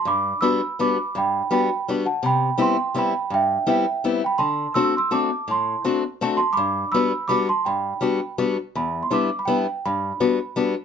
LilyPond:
<<
  \new Staff \with { instrumentName = "Celesta" } { \time 3/4 \key g \major \tempo 4 = 166 <b'' d'''>4 <b'' e'''>4 <b'' d'''>4 | <g'' b''>4 <g'' b''>4 r8 <fis'' a''>8 | <g'' b''>4 <g'' c'''>4 <g'' b''>4 | <e'' g''>4 <e'' g''>4 r8 <g'' b''>8 |
<a'' c'''>4 \tuplet 3/2 { <c''' e'''>8 e'''8 <c''' e'''>8 } <a'' d'''>4 | <a'' c'''>4. r4 <a'' c'''>8 | <b'' d'''>4 <b'' e'''>4 <b'' d'''>8 <a'' c'''>8 | <g'' b''>2 r4 |
\key e \minor b''8. c'''16 d'''8. b''16 g''4 | b''2~ b''8 r8 | }
  \new Staff \with { instrumentName = "Steel-string acoustic guitar" } { \time 3/4 \key g \major g,4 <g b d' fis'>8 r8 <g b d' fis'>8 r8 | g,4 <g b d' fis'>8 r8 <g b d' fis'>8 r8 | c4 <g b c' e'>8 r8 <g b c' e'>8 r8 | g,4 <g b c' e'>8 r8 <g b c' e'>8 r8 |
d4 <a c' d' fis'>8 r8 <a c' d' fis'>8 r8 | a,4 <a c' d' fis'>8 r8 <a c' d' fis'>8 r8 | g,4 <g b d' fis'>8 r8 <g b d' fis'>8 r8 | g,4 <g b d' fis'>8 r8 <g b d' fis'>8 r8 |
\key e \minor e,4 <g b d' e'>8 r8 <g b d' e'>8 r8 | g,4 <g b d' fis'>8 r8 <g b d' fis'>8 r8 | }
>>